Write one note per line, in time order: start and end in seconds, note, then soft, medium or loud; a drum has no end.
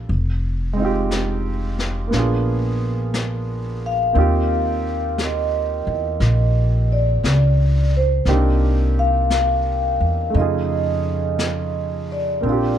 0.00 0.11 F4 soft
0.00 0.12 A4 medium
0.09 2.09 F1 medium
0.09 brush sweep soft
0.73 2.10 G#3 medium
0.73 2.12 C4 soft
0.80 2.14 D#4 soft
0.80 2.15 F4 soft
0.85 2.16 G4 medium
1.11 brush sweep soft
1.11 snare soft
1.11 hi-hat pedal medium
1.79 snare soft
2.08 4.12 A#3 soft
2.08 4.16 B3 soft
2.12 4.13 A#1 medium
2.12 4.17 D4 soft
2.12 brush sweep soft
2.12 snare soft
2.16 4.16 F4 soft
2.16 4.20 G#4 soft
3.14 brush sweep soft
3.14 snare soft
3.14 hi-hat pedal medium
3.86 5.16 F5 medium
4.13 5.84 D#2 medium
4.13 8.25 A#3 medium
4.13 8.26 C4 medium
4.13 8.27 D#4 soft
4.13 brush sweep soft
4.17 8.27 F4 medium
4.17 8.28 G4 medium
5.18 brush sweep soft
5.18 snare soft
5.18 hi-hat pedal medium
5.24 6.89 D#5 medium
5.87 6.18 E2 medium
6.20 7.19 A#1 medium
6.20 brush sweep soft
6.20 snare soft
6.92 7.91 D5 medium
7.23 8.23 C#2 medium
7.23 brush sweep soft
7.23 snare medium
7.23 hi-hat pedal medium
7.97 8.28 C5 medium
8.25 9.96 C2 medium
8.25 10.35 A#3 medium
8.25 10.35 C4 soft
8.25 10.35 D4 soft
8.25 10.34 D#4 soft
8.25 10.36 G4 medium
8.25 brush sweep soft
8.25 snare soft
8.99 10.32 F5 medium
9.30 brush sweep soft
9.30 snare soft
9.30 hi-hat pedal medium
10.00 10.32 E2 medium
10.30 12.43 C#3 soft
10.30 12.42 A3 medium
10.30 brush sweep soft
10.34 12.40 F2 medium
10.34 12.45 D#4 soft
10.34 12.07 D#5 medium
10.39 12.46 F4 soft
10.39 12.47 G#4 medium
11.39 brush sweep soft
11.39 snare soft
11.39 hi-hat pedal soft
12.12 12.78 D5 medium
12.41 12.78 A#1 medium
12.41 12.78 A#3 soft
12.41 12.78 C4 soft
12.45 12.78 D4 soft
12.45 brush sweep soft
12.49 12.78 F4 soft
12.49 12.78 G4 medium